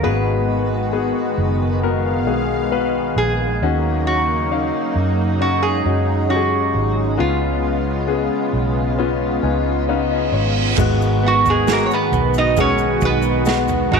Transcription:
0.03 G#1 G#2 D#3 G#3 B3 F#4 G#4 B4
0.93 B3 F#4 G#4
1.38 F#1
1.83 B3 F#4 A#4 F5
2.27 B1 B3 F#4 G#4
2.72 B3 F#4 B4
3.16 A#1 G#4
3.62 D#2 C#3 D#3 F#3 A#3 C#4 D#4 F#4
4.07 F#4
4.51 C#4 D#4 F5
4.96 F#2
5.41 G#3 C#4 D#4 F#4
5.63 G#4
5.85 F#2 C#4 D#4 F#4
6.29 C#4 D#4 F#4 G4
6.36 G#4
6.74 G#1
7.17 C#2 C#3 B3 C#4 F4
8.07 B3 C#4 G#4
8.53 B1
8.98 B3 C#4 F4, reverse cymbal
9.43 C#2 B3 C#4 D#4 G#5
9.89 B3 C#4 D#4 F5
10.11 D#5
10.32 G#1 C#5
10.78 G#1 G#2 D#3 G#3 B3 F#4, kick, floor tom, crash, shaker
11.02 shaker
11.23 B3 F#5
11.28 F#4
11.46 G#3, floor tom, shaker
11.50 G#4
11.67 G#3 B3 F#4 G#4, snare, shaker
11.71 A#3 A#4
11.86 C#5
11.91 B3 B4, shaker
12.12 B1 B3, floor tom, shaker
12.34 shaker
12.38 D#4 D#5
12.57 G#3 B3 C#4 F#4 G#4 C#5, kick, floor tom, shaker
12.78 shaker
13.01 B1 D#4, kick, shaker
13.05 B3 B4
13.22 shaker
13.46 G#3 B3 F#4, snare, shaker
13.68 floor tom, shaker
13.91 G#1 G#3 D#4 G#4, floor tom

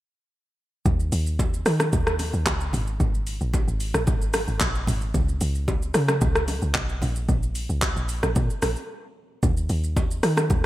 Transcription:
0.86 D#2, kick, low conga, shaker
1.00 shaker
1.12 D#2, open hi-hat, shaker
1.26 shaker
1.39 kick, high bongo, shaker
1.54 shaker
1.66 D#3, cross-stick, open hi-hat, shaker
1.80 cross-stick, low bongo, shaker
1.93 D#2, kick, high bongo, low conga, shaker
2.07 cross-stick, shaker
2.19 open hi-hat, low bongo, shaker
2.33 D#2, shaker
2.46 C#2, kick, clap, high bongo, shaker
2.61 shaker
2.73 G#1, open hi-hat, low conga, shaker
2.87 shaker
3.00 G#1, kick, low conga, shaker
3.15 shaker
3.27 open hi-hat, shaker
3.41 A#1, shaker
3.54 kick, high bongo, shaker
3.68 G#1, shaker
3.80 open hi-hat, shaker
3.94 A#1, cross-stick, low bongo, shaker
4.07 G#1, kick, high bongo, low conga, shaker
4.22 shaker
4.33 cross-stick, open hi-hat, low bongo, shaker
4.48 G#1, shaker
4.60 A#1, kick, clap, high bongo, shaker
4.75 shaker
4.87 G#1, open hi-hat, low conga, shaker
5.01 shaker
5.14 C#2, kick, low conga, shaker
5.29 shaker
5.41 C#2, open hi-hat, shaker
5.55 shaker
5.68 kick, high bongo, shaker
5.82 shaker
5.94 C#3, cross-stick, open hi-hat, shaker
6.08 cross-stick, low bongo, shaker
6.21 C#2, kick, high bongo, low conga, shaker
6.35 cross-stick, shaker
6.48 open hi-hat, low bongo, shaker
6.62 C#2, shaker
6.75 B1, kick, clap, high bongo, shaker
6.89 shaker
7.02 A#1, open hi-hat, low conga, shaker
7.16 shaker
7.29 A#1, kick, low conga, shaker
7.43 shaker
7.55 open hi-hat, shaker
7.69 C#2, shaker
7.82 kick, clap, high bongo, shaker
7.96 A#1, shaker
8.09 open hi-hat, shaker
8.23 A#1, cross-stick, low bongo, shaker
8.36 A#2, kick, high bongo, low conga, shaker
8.50 shaker
8.62 A#1, cross-stick, open hi-hat, low bongo, shaker
8.76 shaker
9.43 D#2, kick, low conga, shaker
9.57 shaker
9.69 D#2, open hi-hat, shaker
9.84 shaker
9.97 kick, high bongo, shaker
10.11 shaker
10.23 D#3, cross-stick, open hi-hat, shaker
10.37 cross-stick, low bongo, shaker
10.50 D#2, kick, high bongo, low conga, shaker

